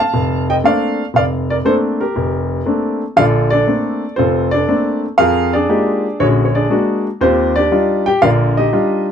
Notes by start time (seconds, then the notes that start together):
Already playing: A5
0.00 F5
0.14 F1
0.50 D#5 G5
0.64 A3 A#3 C4 D4 D5 F5
1.14 F1 D5 F5
1.50 A#4 D5
1.65 A3 A#3 C4 D4 A4 C5
2.01 G4 A#4
2.16 F1
2.66 A3 A#3 C4 D4
3.16 A#1 D3 F4 A4 D5 F5
3.50 D4 A4 D5
3.67 A3 A#3 C4 D4
4.16 F1 C4 F4 A4 C5
4.51 D4 A4 D5
4.68 A3 A#3 C4 D4
5.18 F2 F4 G#4 A#4 F5
5.53 D4 G#4 D5
5.69 G#3 A#3 D#4 F4 G4
6.20 A#1 D3 C#4 F#4 G#4 C#5
6.45 C#5
6.55 D4 G#4 D5
6.70 G#3 A#3 D4 F#4
7.21 D#2 C4 F4 G4 C5
7.56 D4 G4 D5
7.71 G3 D4 D#4 F4
8.06 G4 G5
8.22 A#1 D3 F4 A#4 D5 F5
8.57 D#4 G4 D#5
8.73 G3 D4 D#4 F4